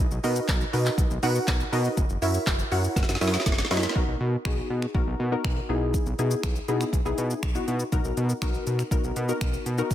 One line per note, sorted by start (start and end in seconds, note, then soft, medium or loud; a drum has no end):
0.11 0.19 B1 loud
0.11 shaker medium
0.24 0.40 B2 loud
0.24 0.63 D#4 medium
0.24 0.63 F#4 medium
0.24 0.63 A#4 medium
0.24 0.63 B4 medium
0.24 0.63 D#5 medium
0.24 open hi-hat medium
0.24 shaker medium
0.36 shaker medium
0.48 0.65 B1 loud
0.48 kick loud
0.48 snare medium
0.48 clap loud
0.48 closed hi-hat medium
0.48 shaker medium
0.61 shaker medium
0.73 0.90 B2 medium
0.73 1.13 D#4 medium
0.73 1.13 F#4 medium
0.73 1.13 A#4 medium
0.73 1.13 B4 medium
0.73 1.13 D#5 medium
0.73 open hi-hat medium
0.73 shaker soft
0.86 clap medium
0.86 shaker medium
0.98 1.06 B1 loud
0.98 kick loud
0.98 closed hi-hat medium
0.98 shaker medium
1.11 1.19 B1 loud
1.11 shaker medium
1.23 1.39 B2 loud
1.23 1.62 D#4 loud
1.23 1.62 F#4 medium
1.23 1.62 A#4 medium
1.23 1.62 B4 medium
1.23 1.62 F#5 loud
1.23 open hi-hat medium
1.23 shaker medium
1.35 shaker medium
1.48 1.64 B1 loud
1.48 kick loud
1.48 snare loud
1.48 clap loud
1.48 closed hi-hat medium
1.48 shaker medium
1.60 shaker medium
1.72 1.89 B2 loud
1.72 1.97 D#4 medium
1.72 1.97 F#4 medium
1.72 1.97 A#4 medium
1.72 1.97 B4 medium
1.72 1.97 D#5 medium
1.72 open hi-hat medium
1.72 shaker medium
1.85 shaker medium
1.97 2.05 F#1 loud
1.97 kick loud
1.97 closed hi-hat medium
1.97 shaker medium
2.09 2.18 F#1 loud
2.09 shaker medium
2.22 2.38 F#2 loud
2.22 2.61 E4 medium
2.22 2.61 F#4 medium
2.22 2.62 A#4 medium
2.22 2.62 C#5 medium
2.22 2.62 E5 medium
2.22 open hi-hat medium
2.22 shaker medium
2.34 shaker medium
2.47 2.63 F#1 loud
2.47 kick loud
2.47 snare loud
2.47 clap loud
2.47 closed hi-hat medium
2.47 shaker medium
2.59 shaker medium
2.71 2.88 F#2 medium
2.71 3.11 E4 medium
2.71 3.11 F#4 medium
2.71 3.11 A#4 medium
2.71 3.11 C#5 medium
2.71 3.11 F#5 medium
2.71 open hi-hat medium
2.71 shaker soft
2.84 shaker medium
2.96 3.04 F#1 loud
2.96 kick loud
2.96 snare medium
2.96 closed hi-hat medium
2.96 shaker medium
3.03 snare medium
3.09 3.17 F#1 loud
3.09 snare medium
3.09 shaker medium
3.15 snare medium
3.21 3.37 F#2 loud
3.21 3.61 E4 medium
3.21 3.61 F#4 medium
3.21 3.61 A#4 medium
3.21 3.61 C#5 medium
3.21 3.61 E5 loud
3.21 snare medium
3.21 open hi-hat medium
3.21 shaker medium
3.28 snare medium
3.34 snare medium
3.34 shaker medium
3.40 snare medium
3.46 3.62 F#1 loud
3.46 kick loud
3.46 snare loud
3.46 closed hi-hat medium
3.46 shaker medium
3.52 snare medium
3.58 snare loud
3.58 shaker medium
3.65 snare medium
3.71 3.87 F#2 loud
3.71 3.96 E4 medium
3.71 3.94 F#4 medium
3.71 3.95 A#4 medium
3.71 3.96 C#5 medium
3.71 3.96 D#5 loud
3.71 snare loud
3.71 open hi-hat medium
3.71 shaker medium
3.77 snare medium
3.83 snare loud
3.83 shaker medium
3.89 snare loud
3.95 4.04 B1 loud
3.95 4.35 B3 medium
3.95 4.35 D#4 medium
3.95 4.35 F#4 medium
3.95 4.35 A#4 loud
3.95 kick loud
4.08 4.16 B1 medium
4.20 4.37 B2 loud
4.45 4.61 B1 loud
4.45 4.85 B3 medium
4.45 4.85 D#4 medium
4.45 4.85 F#4 medium
4.45 4.85 G#4 loud
4.45 finger snap loud
4.45 kick loud
4.70 4.86 B2 medium
4.82 finger snap medium
4.95 5.03 B1 loud
4.95 5.24 B3 medium
4.95 5.24 D#4 medium
4.95 5.24 F#4 medium
4.95 5.25 A#4 medium
4.95 kick loud
5.07 5.15 B1 loud
5.20 5.36 B2 loud
5.32 5.68 B3 medium
5.32 5.68 D#4 medium
5.32 5.69 F#4 medium
5.32 5.69 A#4 medium
5.44 5.61 B1 loud
5.44 finger snap loud
5.44 kick loud
5.69 5.93 B1 loud
5.69 6.09 B3 medium
5.69 6.09 D#4 medium
5.69 6.09 E4 medium
5.69 6.09 G#4 loud
5.94 kick loud
5.94 closed hi-hat medium
5.94 shaker medium
6.06 6.14 B1 medium
6.06 shaker medium
6.19 6.35 B2 medium
6.19 6.58 B3 medium
6.19 6.58 D#4 medium
6.19 6.58 E4 medium
6.19 6.58 G#4 medium
6.19 closed hi-hat medium
6.19 shaker medium
6.31 shaker medium
6.43 6.60 B1 loud
6.43 finger snap loud
6.43 kick loud
6.43 closed hi-hat medium
6.43 shaker medium
6.56 shaker soft
6.68 6.84 B2 medium
6.68 6.98 B3 medium
6.68 6.98 D#4 medium
6.68 6.98 E4 medium
6.68 6.98 G#4 loud
6.68 closed hi-hat soft
6.68 shaker soft
6.81 finger snap medium
6.81 shaker medium
6.93 7.01 B1 loud
6.93 kick loud
6.93 closed hi-hat medium
6.93 shaker medium
7.05 7.14 B1 loud
7.05 7.45 B3 loud
7.05 7.45 D#4 medium
7.05 7.45 E4 medium
7.05 7.45 G#4 loud
7.05 shaker medium
7.18 7.34 B2 loud
7.18 closed hi-hat medium
7.18 shaker medium
7.30 shaker medium
7.43 7.59 B1 loud
7.43 finger snap loud
7.43 kick loud
7.43 closed hi-hat medium
7.43 shaker medium
7.55 7.85 B3 medium
7.55 7.85 D#4 medium
7.55 7.85 E4 medium
7.55 7.85 F#4 loud
7.55 shaker medium
7.68 7.84 B2 loud
7.68 closed hi-hat medium
7.68 shaker medium
7.80 shaker medium
7.92 8.00 B1 loud
7.92 8.32 B3 loud
7.92 8.32 D#4 medium
7.92 8.32 F#4 medium
7.92 8.32 A#4 loud
7.92 kick loud
7.92 closed hi-hat medium
7.92 shaker medium
8.04 8.13 B1 medium
8.04 shaker medium
8.17 8.33 B2 loud
8.17 closed hi-hat medium
8.17 shaker medium
8.29 shaker medium
8.42 8.58 B1 medium
8.42 8.81 B3 medium
8.42 8.81 D#4 medium
8.42 8.81 F#4 medium
8.42 8.82 A#4 loud
8.42 finger snap loud
8.42 kick loud
8.42 closed hi-hat medium
8.42 shaker medium
8.54 shaker soft
8.67 8.83 B2 loud
8.67 closed hi-hat medium
8.67 shaker soft
8.79 finger snap medium
8.79 shaker medium
8.91 8.99 B1 loud
8.91 9.21 B3 medium
8.91 9.21 D#4 medium
8.91 9.21 F#4 medium
8.91 9.21 A#4 loud
8.91 kick loud
8.91 closed hi-hat medium
8.91 shaker medium
9.04 9.12 B1 loud
9.04 shaker medium
9.16 9.32 B2 loud
9.16 closed hi-hat medium
9.16 shaker medium
9.28 9.68 B3 medium
9.28 9.68 D#4 medium
9.28 9.68 F#4 medium
9.28 9.68 A#4 medium
9.28 shaker medium
9.41 9.57 B1 loud
9.41 finger snap loud
9.41 kick loud
9.41 closed hi-hat medium
9.41 shaker medium
9.54 shaker medium
9.66 9.82 B2 loud
9.66 closed hi-hat medium
9.66 shaker medium
9.78 9.91 B3 medium
9.78 9.91 D#4 medium
9.78 9.91 F#4 medium
9.78 9.91 A#4 loud
9.78 shaker medium
9.91 9.95 B1 loud
9.91 kick loud
9.91 closed hi-hat medium
9.91 shaker medium